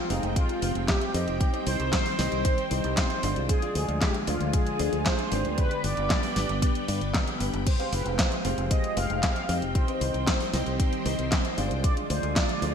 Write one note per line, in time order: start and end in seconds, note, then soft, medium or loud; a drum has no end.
0.00 1.38 F3 medium
0.00 1.38 G#3 medium
0.00 3.45 C4 medium
0.00 3.45 G5 medium
0.10 0.21 F1 loud
0.10 0.59 C4 loud
0.10 0.34 D#4 medium
0.10 0.59 G4 medium
0.10 0.59 G#4 medium
0.10 0.59 F5 loud
0.10 open hi-hat loud
0.23 0.34 F1 medium
0.23 closed hi-hat soft
0.36 0.90 F4 loud
0.36 kick loud
0.36 closed hi-hat medium
0.49 closed hi-hat soft
0.62 0.73 F1 loud
0.62 1.11 C4 medium
0.62 1.11 G4 medium
0.62 1.11 G#4 medium
0.62 1.11 F5 loud
0.62 open hi-hat loud
0.75 0.86 F1 medium
0.75 closed hi-hat soft
0.88 1.13 G4 loud
0.88 kick loud
0.88 snare loud
0.88 clap loud
0.88 closed hi-hat medium
1.01 closed hi-hat soft
1.14 1.25 F2 loud
1.14 1.50 C4 loud
1.14 1.50 D#4 medium
1.14 1.63 G4 loud
1.14 1.50 G4 medium
1.14 1.50 D#5 loud
1.14 open hi-hat loud
1.27 1.38 F1 medium
1.27 closed hi-hat soft
1.40 3.47 D#3 medium
1.40 3.47 G3 medium
1.40 3.47 C5 medium
1.40 kick loud
1.40 closed hi-hat medium
1.53 1.63 C4 loud
1.53 1.63 D#4 medium
1.53 1.63 G4 medium
1.53 1.63 D#5 loud
1.53 closed hi-hat soft
1.67 1.78 C2 medium
1.67 2.16 C4 medium
1.67 2.16 D#4 medium
1.67 2.16 G4 medium
1.67 2.93 C5 loud
1.67 2.16 D#5 medium
1.67 open hi-hat loud
1.80 1.91 C2 medium
1.80 closed hi-hat soft
1.93 kick loud
1.93 snare loud
1.93 clap loud
1.93 closed hi-hat medium
2.06 open hi-hat medium
2.19 2.30 C2 loud
2.19 2.68 C4 loud
2.19 2.68 D#4 medium
2.19 2.68 G4 medium
2.19 2.68 D#5 loud
2.19 snare medium
2.19 open hi-hat loud
2.32 2.43 C2 medium
2.32 closed hi-hat soft
2.45 kick loud
2.45 closed hi-hat medium
2.58 closed hi-hat soft
2.71 2.82 C2 loud
2.71 3.20 C4 medium
2.71 3.20 D#4 medium
2.71 3.20 G4 medium
2.71 3.20 D#5 loud
2.71 open hi-hat loud
2.84 2.95 C2 medium
2.84 closed hi-hat soft
2.97 3.46 C5 loud
2.97 kick loud
2.97 snare loud
2.97 clap loud
2.97 closed hi-hat medium
3.10 closed hi-hat soft
3.23 3.34 G1 loud
3.23 3.59 G#3 loud
3.23 3.59 D4 loud
3.23 3.59 F4 medium
3.23 3.59 D5 loud
3.23 open hi-hat loud
3.36 3.47 C2 medium
3.36 closed hi-hat soft
3.49 7.63 D3 medium
3.49 5.56 F3 medium
3.49 5.56 G#3 medium
3.49 5.56 F4 medium
3.49 4.03 G#4 loud
3.49 5.56 G#4 medium
3.49 kick loud
3.49 closed hi-hat loud
3.62 3.72 G#3 loud
3.62 3.72 D4 medium
3.62 3.72 F4 medium
3.62 3.72 D5 loud
3.62 closed hi-hat soft
3.75 3.86 D2 medium
3.75 4.24 G#3 medium
3.75 4.24 D4 medium
3.75 4.24 F4 medium
3.75 4.24 D5 medium
3.75 open hi-hat loud
3.89 3.99 D2 medium
3.89 closed hi-hat soft
4.01 4.13 G4 loud
4.01 kick loud
4.01 snare loud
4.01 clap loud
4.01 closed hi-hat medium
4.14 closed hi-hat soft
4.27 4.38 D2 loud
4.27 4.76 G#3 loud
4.27 4.76 D4 medium
4.27 4.76 F4 loud
4.27 4.52 F4 loud
4.27 4.76 D5 loud
4.27 open hi-hat loud
4.41 4.52 D2 medium
4.41 closed hi-hat soft
4.53 5.07 G#4 loud
4.53 kick loud
4.53 closed hi-hat loud
4.67 closed hi-hat soft
4.79 4.91 D2 loud
4.79 5.29 G#3 medium
4.79 5.29 D4 medium
4.79 5.29 F4 medium
4.79 5.28 D5 loud
4.79 open hi-hat loud
4.93 5.04 D2 medium
4.93 closed hi-hat soft
5.06 5.59 C5 loud
5.06 kick loud
5.06 snare loud
5.06 clap loud
5.06 closed hi-hat loud
5.19 closed hi-hat soft
5.32 5.43 G#1 loud
5.32 5.68 B3 loud
5.32 5.68 D4 medium
5.32 5.68 G4 medium
5.32 5.68 D5 loud
5.32 open hi-hat loud
5.45 5.56 D2 medium
5.45 closed hi-hat soft
5.58 7.65 G3 medium
5.58 7.65 B3 medium
5.58 5.82 B4 loud
5.58 7.65 B4 medium
5.58 11.80 G5 medium
5.58 kick loud
5.58 closed hi-hat loud
5.71 5.81 B3 medium
5.71 5.81 D4 medium
5.71 5.81 G4 medium
5.71 5.81 D5 loud
5.71 closed hi-hat soft
5.84 5.95 G1 loud
5.84 6.33 B3 medium
5.84 6.33 D4 medium
5.84 6.33 G4 medium
5.84 6.33 D5 medium
5.84 7.37 D5 loud
5.84 open hi-hat loud
5.97 6.08 G1 medium
5.97 closed hi-hat soft
6.10 kick loud
6.10 snare loud
6.10 clap loud
6.10 closed hi-hat loud
6.23 open hi-hat medium
6.36 6.47 G1 loud
6.36 6.85 B3 loud
6.36 6.85 D4 medium
6.36 6.85 G4 medium
6.36 6.85 D5 loud
6.36 snare medium
6.36 open hi-hat loud
6.49 6.60 G1 medium
6.49 closed hi-hat soft
6.62 kick loud
6.62 closed hi-hat loud
6.75 closed hi-hat soft
6.88 6.99 G2 medium
6.88 7.37 B3 medium
6.88 7.37 D4 medium
6.88 7.37 G4 medium
6.88 7.37 D5 loud
6.88 open hi-hat loud
7.01 7.12 G1 medium
7.01 closed hi-hat soft
7.14 kick loud
7.14 snare loud
7.14 clap loud
7.14 closed hi-hat loud
7.28 closed hi-hat soft
7.40 7.51 G1 medium
7.40 7.60 B3 medium
7.40 7.60 D4 medium
7.40 7.60 G4 medium
7.40 7.60 B4 loud
7.40 open hi-hat loud
7.53 7.64 G1 medium
7.53 closed hi-hat soft
7.66 9.73 F3 medium
7.66 9.73 G#3 medium
7.66 11.80 C4 medium
7.66 7.93 C5 loud
7.66 kick loud
7.66 closed hi-hat loud
7.66 crash medium
7.79 7.89 C4 medium
7.79 7.89 G4 medium
7.79 7.89 G#4 medium
7.79 7.89 F5 loud
7.79 closed hi-hat soft
7.92 8.03 F1 medium
7.92 8.42 C4 medium
7.92 8.42 G4 medium
7.92 8.42 G#4 medium
7.92 8.20 B4 medium
7.92 8.42 F5 medium
7.92 open hi-hat loud
8.06 8.17 F1 medium
8.06 closed hi-hat soft
8.19 8.72 C5 loud
8.19 kick loud
8.19 snare loud
8.19 clap loud
8.19 closed hi-hat loud
8.32 closed hi-hat soft
8.45 8.56 F1 loud
8.45 8.94 C4 loud
8.45 8.94 G4 medium
8.45 8.94 G#4 medium
8.45 8.94 F5 loud
8.45 open hi-hat loud
8.58 8.69 F1 medium
8.58 closed hi-hat soft
8.71 8.98 D#5 loud
8.71 kick loud
8.71 closed hi-hat loud
8.84 closed hi-hat soft
8.97 9.08 F1 medium
8.97 9.46 C4 medium
8.97 9.46 G4 medium
8.97 9.46 G#4 medium
8.97 9.22 F5 loud
8.97 9.46 F5 loud
8.97 open hi-hat loud
9.10 9.21 F1 medium
9.10 closed hi-hat soft
9.23 9.77 F5 loud
9.23 kick loud
9.23 snare loud
9.23 clap loud
9.23 closed hi-hat medium
9.36 closed hi-hat soft
9.49 9.60 F2 loud
9.49 9.85 C4 loud
9.49 9.85 D#4 medium
9.49 9.85 G4 medium
9.49 9.85 D#5 loud
9.49 open hi-hat loud
9.62 9.73 F1 medium
9.62 closed hi-hat soft
9.75 11.82 D#3 medium
9.75 11.82 G3 medium
9.75 11.82 C5 medium
9.75 11.54 C5 loud
9.75 kick loud
9.75 closed hi-hat loud
9.88 9.98 C4 loud
9.88 9.98 D#4 medium
9.88 9.98 G4 medium
9.88 9.98 D#5 loud
9.88 closed hi-hat soft
10.01 10.12 C2 loud
10.01 10.50 C4 medium
10.01 10.50 D#4 medium
10.01 10.50 G4 medium
10.01 10.50 D#5 medium
10.01 open hi-hat loud
10.14 10.25 C2 medium
10.14 closed hi-hat soft
10.27 kick loud
10.27 snare loud
10.27 clap loud
10.27 closed hi-hat medium
10.41 open hi-hat medium
10.53 10.64 C2 loud
10.53 11.02 C4 loud
10.53 11.02 D#4 medium
10.53 11.02 G4 medium
10.53 11.02 D#5 loud
10.53 snare medium
10.53 open hi-hat loud
10.66 10.77 C2 medium
10.66 closed hi-hat soft
10.80 kick loud
10.80 closed hi-hat loud
10.93 closed hi-hat soft
11.05 11.17 C2 loud
11.05 11.55 C4 medium
11.05 11.55 D#4 medium
11.05 11.55 G4 medium
11.05 11.55 D#5 loud
11.05 open hi-hat loud
11.19 11.30 C2 medium
11.19 closed hi-hat soft
11.32 kick loud
11.32 snare loud
11.32 clap loud
11.32 closed hi-hat medium
11.45 closed hi-hat soft
11.58 11.69 G1 medium
11.58 11.94 G#3 loud
11.58 11.94 D4 medium
11.58 11.94 F4 loud
11.58 11.94 D5 loud
11.58 open hi-hat loud
11.71 11.82 C2 medium
11.71 closed hi-hat soft
11.84 12.74 D3 medium
11.84 12.74 F3 medium
11.84 12.74 G#3 medium
11.84 12.74 F4 medium
11.84 12.74 G#4 medium
11.84 11.96 D5 loud
11.84 kick loud
11.84 closed hi-hat medium
11.97 12.07 G#3 loud
11.97 12.07 D4 medium
11.97 12.07 F4 medium
11.97 12.07 D5 loud
11.97 closed hi-hat soft
12.10 12.21 D2 medium
12.10 12.59 G#3 medium
12.10 12.59 D4 medium
12.10 12.59 F4 medium
12.10 12.34 C5 loud
12.10 12.59 D5 medium
12.10 open hi-hat loud
12.23 12.34 D2 medium
12.23 closed hi-hat soft
12.36 12.74 D5 loud
12.36 kick loud
12.36 snare loud
12.36 clap loud
12.36 closed hi-hat medium
12.49 closed hi-hat soft
12.62 12.73 D2 loud
12.62 12.74 G#3 loud
12.62 12.74 D4 medium
12.62 12.74 F4 medium
12.62 12.74 D5 loud
12.62 open hi-hat loud